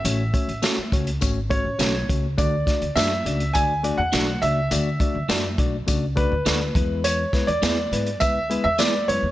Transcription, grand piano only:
\new Staff \with { instrumentName = "Grand piano" } { \time 4/4 \key d \lydian \tempo 4 = 103 e''4. r4 cis''4 r8 | d''4 e''4 gis''8. fis''8. e''8~ | e''4. r4 b'4. | cis''8. d''4~ d''16 e''8. e''16 d''8 cis''8 | }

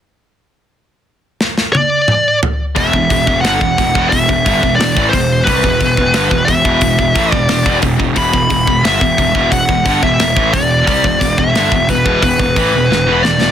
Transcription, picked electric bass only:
\new Staff \with { instrumentName = "Picked electric bass" } { \clef bass \time 4/4 \key e \minor \tempo 4 = 89 r1 | e,,16 e,,16 e,,16 e,,16 g,,16 e,,16 e,,16 e,,16 e,,16 e,,16 g,,16 e,,16 e,,16 a,,16 e,,8 | c,16 e,,16 e,,16 e,,16 g,,16 e,,16 e,,16 e,,16 e,,16 e,,16 a,,16 e,,16 e,,16 e,,16 e,,16 e,,16 | e,,16 e,,16 e,,16 e,,16 g,,16 e,,16 e,,16 e,,16 e,,16 e,,16 g,,16 e,,16 e,,16 a,,16 e,,8 |
c,16 e,,16 e,,16 e,,16 g,,16 e,,16 e,,16 e,,16 e,,16 e,,16 a,,16 e,,16 e,,16 e,,16 e,,16 e,,16 | }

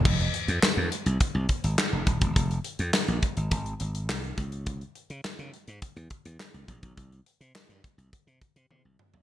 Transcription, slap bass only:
\new Staff \with { instrumentName = "Slap bass" } { \clef bass \time 4/4 \key c \minor \tempo 4 = 104 f,,8 r16 f,16 r16 f,16 r16 c,16 r16 c,16 r16 aes,,16 r16 f,,16 ees,,16 e,,16 | f,,8 r16 f,16 r16 bes,,16 r16 aes,,16 aes,,8 aes,,8 c,8 des,8~ | des,8 r16 des16 r16 des16 r16 aes,16 r16 fes,16 r16 fes,16 r16 des,16 bes,,16 ces,16 | c,8 r16 c16 r16 g,16 r16 c,16 r16 c16 r16 c16 c16 c,16 r16 b,,16 | }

